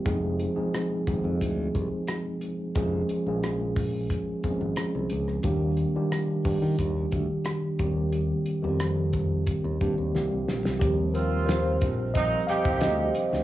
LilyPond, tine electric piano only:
\new Staff \with { instrumentName = "Tine electric piano" } { \time 4/4 \key ees \major \tempo 4 = 89 << { <f aes c' ees' aes'>8 r16 <f aes c' ees' aes'>8 r16 <f aes c' ees' aes'>4~ <f aes c' ees' aes'>16 r4 r16 | <f aes bes des' aes'>8 r16 <f aes bes des' aes'>4~ <f aes bes des' aes'>16 r8 <f aes bes c' des' aes'>4 r8 | <ees g bes d' g'>8 r16 <ees g bes d' g'>8 r16 <ees g bes d' g'>4~ <ees g bes d' g'>16 r8. <ees g bes c' g'>8~ | <ees g bes c' g'>8 r16 <ees g bes c' g'>4~ <ees g bes c' g'>16 r8 <ees g bes c' g'>8 <e g bes c' g'>8. r16 |
g'8 bes'8 c''4 ees''8 f''8 ees''4 | } \\ { r1 | r1 | r1 | r1 |
<f g c'>2 <f g c'>8 r4. | } >> }